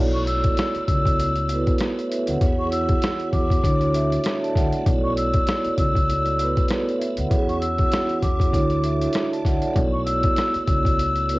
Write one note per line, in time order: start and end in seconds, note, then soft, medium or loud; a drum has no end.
0.00 0.48 B1 loud
0.00 2.38 A3 medium
0.00 1.12 B3 medium
0.00 2.38 B3 medium
0.00 1.12 E4 medium
0.00 2.38 E4 medium
0.00 1.13 F#4 medium
0.00 1.13 A4 medium
0.00 1.13 C#5 medium
0.00 0.13 D5 medium
0.14 0.26 C#6 medium
0.27 0.84 E6 medium
0.27 closed hi-hat medium
0.44 kick loud
0.44 closed hi-hat soft
0.57 cross-stick medium
0.57 snare loud
0.57 closed hi-hat medium
0.75 muted upright bass stroke medium
0.75 closed hi-hat soft
0.87 1.63 C#2 medium
0.87 1.75 E6 medium
0.87 kick medium
0.87 closed hi-hat medium
1.05 kick medium
1.05 closed hi-hat medium
1.20 closed hi-hat loud
1.36 closed hi-hat soft
1.49 2.38 B3 medium
1.49 2.39 E4 medium
1.49 1.82 F#4 medium
1.49 closed hi-hat medium
1.53 1.82 A4 medium
1.53 1.82 B4 loud
1.67 kick loud
1.67 closed hi-hat soft
1.78 cross-stick medium
1.78 snare loud
1.78 closed hi-hat medium
1.99 2.12 F#4 medium
1.99 2.11 C#5 medium
1.99 closed hi-hat soft
2.09 2.27 B4 medium
2.09 2.26 E5 medium
2.09 closed hi-hat medium
2.27 2.39 D2 medium
2.27 2.40 C#5 medium
2.27 2.58 F#5 medium
2.27 closed hi-hat medium
2.39 2.93 E2 loud
2.39 3.63 E3 medium
2.39 3.57 B3 medium
2.39 4.84 B3 medium
2.39 3.58 E4 medium
2.39 3.58 F#4 medium
2.39 4.84 F#4 medium
2.39 3.58 G#4 medium
2.39 3.63 G#4 medium
2.39 3.58 C#5 medium
2.39 kick loud
2.39 closed hi-hat medium
2.59 2.71 C#6 medium
2.72 3.29 E6 medium
2.72 closed hi-hat medium
2.89 kick loud
2.89 closed hi-hat medium
3.02 cross-stick medium
3.02 snare loud
3.02 closed hi-hat loud
3.20 closed hi-hat soft
3.33 3.59 E2 medium
3.33 4.38 D6 medium
3.33 kick medium
3.33 closed hi-hat medium
3.50 kick medium
3.50 closed hi-hat medium
3.62 4.15 D2 loud
3.62 4.85 D3 medium
3.62 7.27 A3 medium
3.62 3.91 D4 loud
3.62 3.92 E4 medium
3.62 3.92 F#4 medium
3.62 3.93 A4 medium
3.62 3.94 C#5 loud
3.62 kick loud
3.62 closed hi-hat loud
3.81 closed hi-hat soft
3.92 4.81 D4 medium
3.92 4.81 E4 medium
3.92 4.82 F#4 medium
3.92 4.25 A4 medium
3.92 4.25 E5 loud
3.92 closed hi-hat medium
4.12 closed hi-hat medium
4.23 cross-stick medium
4.23 snare loud
4.23 closed hi-hat medium
4.42 4.55 D5 medium
4.42 4.55 A5 medium
4.42 closed hi-hat soft
4.55 4.70 D2 loud
4.55 4.72 C#5 medium
4.55 4.72 F#5 medium
4.55 kick loud
4.55 snare soft
4.55 closed hi-hat medium
4.72 4.83 A4 medium
4.72 5.03 D5 medium
4.72 closed hi-hat medium
4.83 5.38 B1 loud
4.83 6.01 B3 medium
4.83 7.28 B3 medium
4.83 6.02 E4 medium
4.83 7.28 E4 medium
4.83 6.02 F#4 medium
4.83 6.02 A4 medium
4.83 6.03 C#5 medium
4.83 kick loud
4.83 closed hi-hat medium
5.04 5.16 C#6 medium
5.17 5.75 E6 medium
5.17 closed hi-hat medium
5.33 kick loud
5.33 closed hi-hat soft
5.47 cross-stick medium
5.47 snare loud
5.47 closed hi-hat medium
5.64 muted upright bass stroke medium
5.64 closed hi-hat soft
5.78 6.53 C#2 medium
5.78 6.66 E6 medium
5.78 kick medium
5.78 closed hi-hat medium
5.95 kick loud
5.95 closed hi-hat medium
6.09 closed hi-hat loud
6.25 closed hi-hat soft
6.39 7.28 B3 medium
6.39 7.28 E4 medium
6.39 6.71 F#4 medium
6.39 6.72 A4 medium
6.39 closed hi-hat medium
6.43 6.72 B4 loud
6.57 kick loud
6.57 closed hi-hat soft
6.68 cross-stick medium
6.68 snare loud
6.68 closed hi-hat medium
6.89 7.01 F#4 medium
6.89 7.01 C#5 medium
6.89 closed hi-hat soft
6.98 7.16 B4 medium
6.98 7.16 E5 medium
6.98 closed hi-hat medium
7.17 7.29 D2 medium
7.17 7.30 C#5 medium
7.17 7.48 F#5 medium
7.17 closed hi-hat medium
7.29 7.83 E2 loud
7.29 8.52 E3 medium
7.29 8.47 B3 medium
7.29 8.52 C#4 medium
7.29 8.47 E4 medium
7.29 8.48 F#4 medium
7.29 9.74 F#4 medium
7.29 8.48 G#4 medium
7.29 8.52 G#4 medium
7.29 8.48 C#5 loud
7.29 kick loud
7.29 closed hi-hat medium
7.49 7.60 C#6 medium
7.49 closed hi-hat soft
7.61 8.19 E6 medium
7.61 closed hi-hat medium
7.78 kick loud
7.78 closed hi-hat medium
7.92 cross-stick medium
7.92 snare loud
7.92 closed hi-hat medium
8.09 closed hi-hat soft
8.23 8.49 E2 loud
8.23 9.28 D6 medium
8.23 kick medium
8.23 closed hi-hat medium
8.40 kick medium
8.40 closed hi-hat medium
8.52 9.05 D2 loud
8.52 9.74 D3 medium
8.52 9.72 A3 medium
8.52 9.74 D4 medium
8.52 8.81 D4 medium
8.52 8.82 E4 medium
8.52 8.82 F#4 medium
8.52 8.83 A4 medium
8.52 8.83 C#5 loud
8.52 kick loud
8.52 closed hi-hat loud
8.70 closed hi-hat soft
8.82 9.71 D4 medium
8.82 9.71 E4 medium
8.82 9.72 F#4 medium
8.82 9.15 A4 medium
8.82 9.15 E5 loud
8.82 closed hi-hat medium
9.02 closed hi-hat soft
9.13 cross-stick medium
9.13 snare loud
9.13 closed hi-hat medium
9.32 9.45 D5 medium
9.32 9.45 A5 medium
9.32 closed hi-hat soft
9.45 9.60 D2 medium
9.45 9.62 C#5 medium
9.45 9.62 F#5 medium
9.45 kick loud
9.45 snare soft
9.45 closed hi-hat medium
9.62 9.73 A4 medium
9.62 9.92 D5 medium
9.62 closed hi-hat medium
9.73 10.28 B1 loud
9.73 11.39 A3 medium
9.73 10.91 B3 medium
9.73 11.39 B3 medium
9.73 10.92 E4 medium
9.73 11.39 E4 medium
9.73 10.92 F#4 medium
9.73 10.92 A4 medium
9.73 10.93 C#5 medium
9.73 kick loud
9.73 closed hi-hat medium
9.93 10.05 C#6 medium
10.06 10.64 E6 medium
10.06 closed hi-hat medium
10.23 kick loud
10.23 closed hi-hat medium
10.36 cross-stick medium
10.36 snare loud
10.36 closed hi-hat loud
10.54 muted upright bass stroke soft
10.54 closed hi-hat soft
10.66 11.39 C#2 medium
10.66 11.39 E6 medium
10.66 kick medium
10.66 closed hi-hat medium
10.85 kick medium
10.85 closed hi-hat medium
10.99 closed hi-hat loud
11.15 closed hi-hat soft
11.29 11.39 B3 medium
11.29 11.39 E4 medium
11.29 11.39 F#4 medium
11.29 11.39 A4 medium
11.29 closed hi-hat medium
11.33 11.39 B4 loud